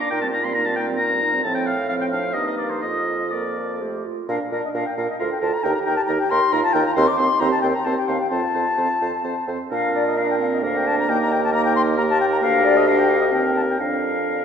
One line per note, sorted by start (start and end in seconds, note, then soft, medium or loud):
0.00 0.11 A#3 soft
0.00 0.11 D5 medium
0.00 0.10 A#5 medium
0.10 1.40 A#2 medium
0.10 0.25 A#3 medium
0.10 0.23 D#4 medium
0.10 0.24 A#4 medium
0.10 0.21 G5 loud
0.21 0.35 G3 medium
0.21 0.33 C4 medium
0.21 0.35 C5 medium
0.21 0.27 A5 medium
0.31 0.46 A#3 medium
0.31 0.45 D#4 medium
0.31 0.47 A#4 medium
0.31 0.46 A#5 medium
0.44 0.54 G3 medium
0.44 0.54 C4 medium
0.44 0.55 C5 medium
0.44 0.55 C6 medium
0.54 0.68 A#3 medium
0.54 0.67 D#4 medium
0.54 0.68 A#4 medium
0.54 0.67 A#5 loud
0.65 0.79 G3 medium
0.65 0.78 C4 medium
0.65 0.79 C5 medium
0.65 0.75 A5 loud
0.76 0.90 A#3 medium
0.76 0.89 D#4 medium
0.76 0.91 A#4 medium
0.76 0.86 G5 medium
0.87 0.99 G3 medium
0.87 0.99 C4 medium
0.87 1.00 C5 medium
0.97 1.12 A#3 medium
0.97 1.12 D#4 medium
0.97 1.13 A#4 medium
0.97 1.42 A#5 loud
1.10 1.24 G3 medium
1.10 1.23 C4 medium
1.10 1.25 C5 medium
1.21 1.34 A#3 medium
1.21 1.34 D#4 medium
1.21 1.36 A#4 medium
1.33 1.42 G3 medium
1.33 1.43 C4 medium
1.33 1.45 C5 medium
1.43 2.36 A2 medium
1.43 1.76 F3 medium
1.43 1.76 C4 medium
1.43 1.70 C5 medium
1.43 1.54 A5 loud
1.55 1.68 G5 medium
1.67 1.89 F5 loud
1.89 2.37 F3 medium
1.89 2.11 C4 medium
1.89 2.37 C5 medium
1.89 1.94 F5 medium
2.01 2.06 G5 medium
2.12 2.22 D4 medium
2.12 2.35 F5 medium
2.33 2.82 G2 medium
2.33 2.82 A#3 medium
2.33 2.82 D#4 medium
2.33 2.83 A#4 medium
2.33 2.46 D#5 medium
2.47 2.53 D#5 medium
2.57 2.71 D5 medium
2.70 2.81 C5 medium
2.82 4.02 F2 medium
2.82 3.31 A#3 medium
2.82 3.32 F4 medium
2.82 3.32 A#4 medium
2.82 3.33 D#5 medium
3.32 3.82 A#3 medium
3.32 3.44 A#4 medium
3.32 3.82 A#4 medium
3.32 3.80 D5 medium
3.57 3.83 A4 medium
3.80 4.05 A3 medium
3.80 4.07 G4 medium
3.80 4.04 C5 medium
4.05 4.28 F4 medium
4.28 4.38 A#2 medium
4.28 4.39 D4 medium
4.28 4.71 D4 medium
4.28 4.39 A#4 medium
4.28 4.35 F5 medium
4.52 4.62 A#2 medium
4.52 4.62 D4 medium
4.52 4.62 A#4 medium
4.52 4.57 D5 medium
4.64 4.69 D#5 medium
4.74 4.84 A#2 medium
4.74 4.84 D4 medium
4.74 5.21 A#4 medium
4.74 4.85 A#4 medium
4.74 4.87 F5 medium
4.86 4.96 G5 medium
4.97 5.07 A#2 medium
4.97 5.07 D4 medium
4.97 5.08 A#4 medium
4.97 5.08 F5 medium
5.09 5.18 D#5 medium
5.19 5.30 D2 medium
5.19 5.29 F4 medium
5.19 5.66 A4 medium
5.19 5.29 A#4 medium
5.19 5.24 F5 medium
5.31 5.40 G5 medium
5.41 5.52 D2 medium
5.41 5.52 F4 medium
5.41 5.51 A#4 medium
5.41 5.54 A5 loud
5.53 5.64 A#5 loud
5.63 5.74 D#2 medium
5.63 5.74 D#4 medium
5.63 6.54 G4 medium
5.63 5.74 A#4 medium
5.63 5.73 G5 loud
5.74 5.79 A#5 loud
5.84 5.96 D#2 medium
5.84 5.96 D#4 medium
5.84 5.95 A#4 medium
5.84 5.95 G5 loud
5.96 6.01 A5 loud
6.06 6.18 D#2 medium
6.06 6.18 D#4 medium
6.06 6.18 A#4 medium
6.06 6.11 A#5 loud
6.19 6.31 G5 loud
6.30 6.41 D#2 medium
6.30 6.40 D#4 medium
6.30 6.41 A#4 medium
6.30 6.54 C6 loud
6.52 6.62 D#2 loud
6.52 6.62 D#4 medium
6.52 6.98 F4 medium
6.52 6.62 A#4 medium
6.52 6.63 A#5 loud
6.63 6.74 A5 loud
6.72 6.84 D#2 loud
6.72 6.84 D#4 medium
6.72 6.84 A#4 medium
6.72 6.84 G5 loud
6.85 6.94 A#5 loud
6.95 7.06 D#2 loud
6.95 7.06 C4 medium
6.95 7.43 D#4 medium
6.95 7.06 C5 medium
6.95 7.08 C6 loud
7.07 7.19 D6 loud
7.17 7.29 D#2 medium
7.17 7.29 C4 medium
7.17 7.27 C5 medium
7.17 7.41 C6 loud
7.40 7.51 D#2 loud
7.40 7.51 C4 medium
7.40 7.85 G4 loud
7.40 7.51 C5 medium
7.40 7.50 A#5 loud
7.51 7.61 A5 loud
7.61 7.73 D#2 medium
7.61 7.73 C4 medium
7.61 7.73 C5 medium
7.61 7.67 G5 loud
7.73 7.86 A#5 loud
7.84 7.96 D#2 medium
7.84 7.96 C4 medium
7.84 8.33 G4 medium
7.84 7.96 C5 medium
7.84 7.96 A5 loud
7.97 8.09 G5 medium
8.07 8.19 D#2 medium
8.07 8.18 C4 medium
8.07 8.18 C5 medium
8.07 8.20 F5 loud
8.20 8.29 G5 loud
8.29 8.42 F2 medium
8.29 8.42 C4 medium
8.29 9.48 F4 medium
8.29 8.40 C5 medium
8.29 9.45 A5 loud
8.54 8.65 F2 medium
8.54 8.65 C4 medium
8.54 8.65 C5 medium
8.77 8.88 F2 medium
8.77 8.87 C4 medium
8.77 8.88 C5 medium
9.01 9.12 F2 medium
9.01 9.11 C4 medium
9.01 9.12 C5 medium
9.23 9.35 F2 medium
9.23 9.34 C4 medium
9.23 9.35 C5 medium
9.47 9.58 F2 medium
9.47 9.58 C4 medium
9.47 9.58 C5 medium
9.71 10.65 A#2 medium
9.71 10.14 D4 medium
9.71 10.14 A#4 medium
9.71 9.93 F5 loud
9.94 10.06 D5 medium
10.06 10.19 D#5 medium
10.16 10.41 D4 medium
10.16 11.11 D4 medium
10.16 10.62 A#4 medium
10.16 10.29 F5 loud
10.30 10.35 G5 medium
10.39 10.63 C4 medium
10.39 10.46 F5 loud
10.53 10.58 D#5 medium
10.62 11.07 D2 medium
10.62 11.08 A#3 medium
10.62 11.07 A#4 medium
10.62 10.78 F5 loud
10.76 10.88 G5 medium
10.87 10.98 A5 loud
10.99 11.10 A#5 loud
11.07 12.40 D#2 loud
11.07 11.52 A#3 medium
11.07 11.98 D#4 medium
11.07 11.51 A#4 medium
11.07 11.20 G5 loud
11.22 11.33 A#5 loud
11.32 11.43 G5 loud
11.44 11.52 A5 loud
11.52 11.97 A#3 loud
11.52 11.96 A#4 medium
11.52 11.64 A#5 loud
11.65 11.75 G5 loud
11.75 11.81 C6 loud
11.97 12.42 A#3 medium
11.97 13.77 G4 loud
11.97 12.41 A#4 loud
11.97 12.03 A#5 loud
12.09 12.20 A5 loud
12.20 12.25 G5 loud
12.32 12.37 A#5 loud
12.42 13.33 D2 loud
12.42 12.84 D4 medium
12.42 12.84 A#4 loud
12.42 12.66 F5 loud
12.64 12.78 D5 loud
12.76 12.89 D#5 loud
12.87 13.33 D4 medium
12.87 13.31 A#4 medium
12.87 13.00 F5 loud
12.98 13.10 G5 loud
13.09 13.20 F5 loud
13.20 13.26 D#5 loud
13.31 13.79 D#2 medium
13.31 13.78 C4 medium
13.31 13.78 A#4 medium
13.31 13.44 G5 loud
13.45 13.50 G5 medium
13.55 13.61 A5 loud
13.69 13.81 G5 medium
13.79 14.45 F2 medium
13.79 14.45 D4 medium
13.79 14.23 D4 medium
13.79 14.45 A#4 medium
13.79 14.45 F5 medium
14.30 14.40 D4 medium